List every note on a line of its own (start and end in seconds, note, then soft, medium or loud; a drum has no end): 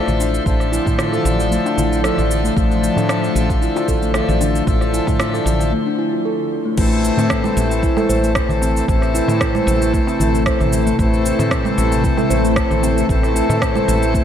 0.00 5.73 D3 medium
0.00 0.42 F3 medium
0.00 5.73 F3 medium
0.00 0.43 D4 medium
0.00 0.43 A4 loud
0.00 5.73 C5 medium
0.00 0.43 E5 medium
0.07 0.38 A1 medium
0.07 darbuka dum medium
0.07 cabasa soft
0.20 0.71 D4 medium
0.20 darbuka tek medium
0.20 cabasa medium
0.35 cabasa soft
0.44 0.78 A1 medium
0.44 2.00 F3 loud
0.44 2.01 D4 medium
0.44 2.01 E5 medium
0.44 kick loud
0.44 cabasa soft
0.48 2.02 A4 loud
0.60 cross-stick soft
0.60 darbuka ka soft
0.60 cabasa soft
0.72 0.97 E4 loud
0.72 cabasa medium
0.86 1.17 A2 medium
0.86 kick medium
0.86 darbuka tek medium
0.86 darbuka dum medium
0.86 cabasa soft
0.99 1.11 F4 medium
0.99 cross-stick medium
0.99 cabasa soft
1.13 1.25 A4 medium
1.13 darbuka ka soft
1.13 cabasa soft
1.25 1.57 A1 loud
1.25 cabasa medium
1.39 darbuka ka soft
1.39 cabasa soft
1.51 1.64 A3 medium
1.51 cabasa soft
1.65 1.77 D4 medium
1.65 darbuka tek medium
1.65 cabasa soft
1.77 2.09 A1 medium
1.77 1.90 E4 loud
1.77 darbuka ka medium
1.77 darbuka tek soft
1.77 darbuka dum medium
1.77 cabasa medium
1.92 1.99 F4 medium
1.92 cabasa soft
2.03 2.53 F3 medium
2.03 2.53 D4 medium
2.03 2.43 A4 medium
2.03 2.54 A4 loud
2.03 2.54 E5 medium
2.03 cross-stick medium
2.03 cabasa soft
2.18 2.49 A1 medium
2.18 darbuka dum medium
2.18 cabasa soft
2.31 cabasa medium
2.44 2.55 A3 medium
2.44 cabasa soft
2.54 2.88 A1 medium
2.54 4.10 F3 loud
2.54 2.95 A3 medium
2.54 4.11 D4 loud
2.54 4.12 E5 medium
2.54 kick loud
2.54 cabasa soft
2.58 4.12 A4 loud
2.71 cabasa soft
2.84 cabasa medium
2.96 3.28 A2 medium
2.96 3.09 D4 medium
2.96 darbuka tek medium
2.96 darbuka dum medium
2.96 cabasa soft
3.09 cross-stick loud
3.09 cabasa soft
3.23 darbuka ka medium
3.23 cabasa soft
3.35 3.67 A1 loud
3.35 cabasa medium
3.50 kick loud
3.50 darbuka ka soft
3.50 cabasa soft
3.62 3.74 E4 medium
3.62 cabasa soft
3.76 3.83 F4 loud
3.76 darbuka ka medium
3.76 darbuka tek medium
3.76 cabasa soft
3.88 4.20 A1 medium
3.88 4.01 A4 loud
3.88 kick medium
3.88 cabasa medium
4.02 4.14 A3 medium
4.02 cabasa soft
4.13 4.63 F3 medium
4.13 4.64 D4 medium
4.13 4.65 A4 loud
4.13 4.64 E5 medium
4.13 cross-stick medium
4.13 darbuka ka medium
4.13 cabasa soft
4.28 4.59 A1 medium
4.28 darbuka dum medium
4.28 cabasa soft
4.41 4.92 D4 medium
4.41 darbuka tek medium
4.41 cabasa medium
4.55 cabasa soft
4.65 4.99 A1 loud
4.65 5.71 F3 loud
4.65 5.72 D4 medium
4.65 5.73 E5 medium
4.65 kick loud
4.65 cabasa soft
4.69 5.73 A4 loud
4.81 cross-stick soft
4.81 darbuka ka soft
4.81 cabasa soft
4.94 5.19 E4 medium
4.94 cabasa medium
5.07 5.38 A2 medium
5.07 kick medium
5.07 darbuka tek medium
5.07 darbuka dum medium
5.07 cabasa soft
5.20 5.33 F4 medium
5.20 cross-stick loud
5.20 cabasa soft
5.34 5.46 A4 medium
5.34 darbuka ka medium
5.34 cabasa soft
5.46 5.72 A1 loud
5.46 cabasa medium
5.60 darbuka ka soft
5.60 cabasa soft
5.72 5.85 A3 medium
5.86 5.98 D4 medium
5.99 6.11 E4 loud
6.13 6.20 F4 medium
6.25 6.64 A4 medium
6.65 6.76 A3 medium
6.75 7.09 A1 loud
6.75 14.24 C3 medium
6.75 8.31 E3 loud
6.75 8.32 A3 medium
6.75 7.17 A3 loud
6.75 8.33 C4 medium
6.75 kick loud
6.75 crash medium
6.75 cabasa soft
6.79 8.34 A4 loud
6.92 cabasa soft
7.05 cabasa medium
7.17 7.49 A2 medium
7.17 7.30 C4 medium
7.17 darbuka tek medium
7.17 darbuka dum medium
7.17 cabasa soft
7.22 14.24 A3 medium
7.30 kick loud
7.30 cross-stick loud
7.30 cabasa soft
7.44 14.24 E4 medium
7.44 darbuka ka medium
7.44 low conga medium
7.44 cabasa soft
7.57 7.88 A1 loud
7.57 cabasa medium
7.71 darbuka ka medium
7.71 cabasa soft
7.83 7.96 E4 medium
7.83 kick loud
7.83 cabasa soft
7.97 8.04 A4 loud
7.97 darbuka ka soft
7.97 darbuka tek medium
7.97 low conga medium
7.97 cabasa soft
8.09 8.41 A1 medium
8.09 8.22 C5 loud
8.09 cabasa medium
8.23 8.35 A3 medium
8.23 cabasa soft
8.34 8.84 E3 medium
8.34 8.85 A3 medium
8.34 8.85 C4 medium
8.34 8.86 A4 loud
8.34 kick loud
8.34 cross-stick loud
8.34 darbuka ka medium
8.34 cabasa soft
8.49 8.80 A1 medium
8.49 darbuka dum medium
8.49 cabasa soft
8.62 9.13 C4 medium
8.62 darbuka tek medium
8.62 cabasa medium
8.76 14.24 A4 medium
8.76 cabasa soft
8.86 9.20 A1 loud
8.86 10.42 E3 loud
8.86 10.43 A3 loud
8.86 10.43 C4 medium
8.86 kick loud
8.86 cabasa soft
8.90 10.44 A4 loud
9.02 cross-stick soft
9.02 darbuka ka soft
9.02 cabasa soft
9.15 9.40 E4 loud
9.15 cabasa medium
9.28 9.59 A2 medium
9.28 darbuka tek medium
9.28 darbuka dum medium
9.28 cabasa soft
9.41 kick loud
9.41 cross-stick loud
9.41 cabasa soft
9.55 9.67 C5 medium
9.55 darbuka ka medium
9.55 low conga medium
9.55 cabasa soft
9.67 9.99 A1 loud
9.67 cabasa medium
9.81 darbuka ka soft
9.81 cabasa soft
9.93 10.06 A3 medium
9.93 kick loud
9.93 cabasa soft
10.07 10.19 C4 medium
10.07 darbuka tek medium
10.07 cabasa soft
10.20 10.51 A1 medium
10.20 10.32 E4 loud
10.20 darbuka ka soft
10.20 darbuka tek soft
10.20 darbuka dum loud
10.20 cabasa medium
10.34 10.41 A4 medium
10.34 cabasa soft
10.45 10.95 E3 loud
10.45 10.96 A3 medium
10.45 10.96 C4 medium
10.45 10.96 A4 loud
10.45 10.85 C5 medium
10.45 kick loud
10.45 cross-stick loud
10.45 cabasa soft
10.60 10.91 A1 medium
10.60 darbuka dum loud
10.60 cabasa soft
10.73 cabasa medium
10.86 10.97 A3 medium
10.86 cabasa soft
10.97 11.30 A1 loud
10.97 12.53 E3 loud
10.97 12.53 A3 loud
10.97 11.38 A3 medium
10.97 12.54 C4 medium
10.97 kick loud
10.97 cabasa soft
11.01 12.55 A4 loud
11.14 cabasa soft
11.26 cabasa medium
11.39 11.70 A2 medium
11.39 11.51 C4 medium
11.39 darbuka tek medium
11.39 darbuka dum medium
11.39 cabasa soft
11.51 kick loud
11.51 cross-stick loud
11.51 cabasa soft
11.65 darbuka ka medium
11.65 low conga medium
11.65 cabasa soft
11.78 12.09 A1 loud
11.78 cabasa medium
11.92 darbuka ka soft
11.92 cabasa soft
12.04 12.17 E4 medium
12.04 kick loud
12.04 cabasa soft
12.17 12.25 A4 loud
12.17 darbuka ka soft
12.17 darbuka tek medium
12.17 low conga medium
12.17 cabasa soft
12.30 12.62 A1 medium
12.30 12.43 C5 loud
12.30 cabasa medium
12.44 12.56 A3 medium
12.44 cabasa soft
12.56 13.05 E3 medium
12.56 13.06 A3 medium
12.56 13.06 C4 medium
12.56 13.07 A4 loud
12.56 kick loud
12.56 cross-stick loud
12.56 darbuka ka medium
12.56 cabasa soft
12.70 13.02 A1 medium
12.70 darbuka dum medium
12.70 cabasa soft
12.83 13.34 C4 medium
12.83 darbuka tek medium
12.83 cabasa medium
12.98 cabasa soft
13.07 13.41 A1 loud
13.07 14.24 E3 loud
13.07 14.24 A3 loud
13.07 14.24 C4 medium
13.07 kick loud
13.07 cabasa soft
13.11 14.24 A4 loud
13.23 cross-stick soft
13.23 darbuka ka soft
13.23 cabasa soft
13.35 13.61 E4 loud
13.35 cabasa medium
13.49 13.80 A2 medium
13.49 darbuka tek medium
13.49 darbuka dum medium
13.49 cabasa soft
13.62 kick loud
13.62 cross-stick loud
13.62 cabasa soft
13.76 13.87 C5 medium
13.76 darbuka ka medium
13.76 low conga medium
13.76 cabasa soft
13.88 14.20 A1 medium
13.88 cabasa medium
14.02 darbuka ka medium
14.02 cabasa soft
14.14 14.24 A3 medium
14.14 kick loud
14.14 cabasa soft